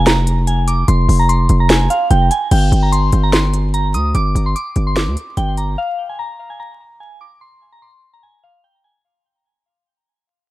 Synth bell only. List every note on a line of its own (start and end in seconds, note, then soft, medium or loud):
0.06 0.45 A#5 medium
0.47 0.64 G#5 medium
0.68 0.85 D6 medium
0.88 1.17 C6 medium
1.19 1.27 A#5 medium
1.29 1.58 C6 medium
1.60 1.68 A#5 medium
1.70 1.87 G#5 medium
1.90 2.07 F5 medium
2.11 2.28 G5 medium
2.31 2.48 G#5 medium
2.51 2.81 G5 loud
2.83 2.91 A#5 medium
2.92 3.22 C6 medium
3.23 3.31 A#5 medium
3.33 3.71 C6 medium
3.74 3.91 A#5 medium
3.94 4.11 D#6 medium
4.15 4.44 D6 loud
4.46 4.54 C6 medium
4.56 4.85 D6 medium
4.87 4.95 C6 medium
4.96 5.35 D6 medium
5.37 5.54 G5 medium
5.58 5.75 A#5 medium
5.78 6.07 F5 loud
6.09 6.17 G#5 medium
6.19 6.48 A#5 medium
6.50 6.58 G#5 medium
6.60 6.98 A#5 medium
7.00 7.17 G#5 medium
7.21 7.38 D6 medium
7.41 7.71 C6 medium
7.72 7.81 A#5 medium
7.82 8.11 C6 medium
8.13 8.21 A#5 medium
8.23 8.40 G#5 medium
8.43 8.60 F5 medium
8.64 8.81 G5 medium
8.84 9.01 G#5 medium